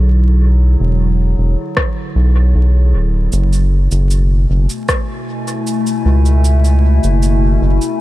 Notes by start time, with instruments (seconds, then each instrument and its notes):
Already playing: analog synth bass B1, ambient pad D3 F#3 E4 G#4
0.80 analog synth bass E1
1.38 analog synth bass E1
1.77 kick, cross-stick
2.16 analog synth bass B1
2.55 analog synth bass B1
2.94 analog synth bass D1
3.32 analog synth bass F#1, ambient pad B2, cabasa
3.53 cabasa
3.91 analog synth bass F#1, ambient pad A3, cabasa
4.11 cabasa
4.28 ambient pad G#5
4.50 analog synth bass F#1
4.70 ambient pad E4, cabasa
4.89 kick, cross-stick, cabasa
5.48 cabasa
5.67 cabasa
5.87 cabasa
6.05 analog synth bass C#2
6.26 cabasa
6.45 cabasa
6.65 cabasa
7.04 analog synth bass F#1, cabasa
7.23 cabasa
7.61 analog synth bass F#1
7.82 cabasa